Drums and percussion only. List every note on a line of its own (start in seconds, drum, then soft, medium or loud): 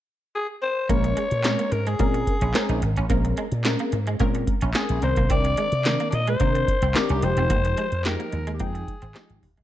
0.90 kick loud
0.90 closed hi-hat medium
1.04 closed hi-hat soft
1.17 closed hi-hat medium
1.31 closed hi-hat soft
1.44 snare loud
1.44 clap medium
1.44 closed hi-hat loud
1.59 closed hi-hat medium
1.72 closed hi-hat medium
1.87 closed hi-hat medium
1.99 kick loud
1.99 closed hi-hat medium
2.14 closed hi-hat soft
2.27 kick medium
2.27 closed hi-hat medium
2.41 closed hi-hat medium
2.54 snare loud
2.54 clap loud
2.54 closed hi-hat loud
2.69 closed hi-hat medium
2.82 closed hi-hat medium
2.96 closed hi-hat medium
3.10 kick loud
3.10 closed hi-hat medium
3.25 closed hi-hat soft
3.37 closed hi-hat medium
3.52 closed hi-hat medium
3.64 snare loud
3.64 clap medium
3.64 closed hi-hat loud
3.79 closed hi-hat soft
3.92 closed hi-hat medium
4.07 closed hi-hat soft
4.19 kick loud
4.19 closed hi-hat medium
4.35 closed hi-hat medium
4.47 kick medium
4.47 closed hi-hat medium
4.61 closed hi-hat medium
4.74 snare loud
4.74 clap medium
4.74 closed hi-hat medium
4.89 closed hi-hat medium
5.02 closed hi-hat medium
5.16 kick medium
5.16 closed hi-hat medium
5.30 kick loud
5.30 closed hi-hat medium
5.45 closed hi-hat medium
5.57 closed hi-hat medium
5.72 closed hi-hat soft
5.85 snare loud
5.85 clap medium
5.85 closed hi-hat medium
6.00 closed hi-hat soft
6.12 closed hi-hat medium
6.27 closed hi-hat medium
6.40 kick loud
6.40 closed hi-hat medium
6.55 closed hi-hat soft
6.68 kick medium
6.68 closed hi-hat medium
6.82 closed hi-hat medium
6.95 snare loud
6.95 clap medium
6.95 closed hi-hat medium
7.09 closed hi-hat medium
7.22 closed hi-hat medium
7.37 closed hi-hat medium
7.50 kick loud
7.50 closed hi-hat medium
7.65 closed hi-hat medium
7.77 closed hi-hat medium
7.92 closed hi-hat soft
8.05 snare loud
8.05 clap medium
8.05 closed hi-hat medium
8.20 closed hi-hat soft
8.32 closed hi-hat medium
8.47 closed hi-hat soft
8.60 kick loud
8.60 closed hi-hat medium
8.75 closed hi-hat soft
8.88 kick medium
8.88 closed hi-hat medium
9.02 closed hi-hat medium
9.15 snare loud
9.15 clap medium
9.15 closed hi-hat medium
9.30 closed hi-hat medium
9.43 kick medium
9.43 open hi-hat medium
9.57 kick medium
9.57 closed hi-hat medium